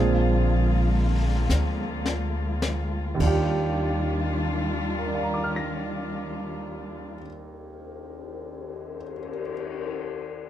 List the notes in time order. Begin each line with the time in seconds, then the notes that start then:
Already playing: A#1 D3 F3 G#3 A#3 C4 F4
0.00 D4 G#4
1.49 D2, snare, hi-hat pedal
2.06 snare
2.62 snare
3.15 D#2 D#3
3.19 D#2 D#3 G3 D4 F4, kick, crash
3.24 F4 G4
4.37 cymbal swell
4.99 A#4
5.06 D5
5.15 F5
5.23 A#5
5.34 D6
5.44 F6
5.56 A#6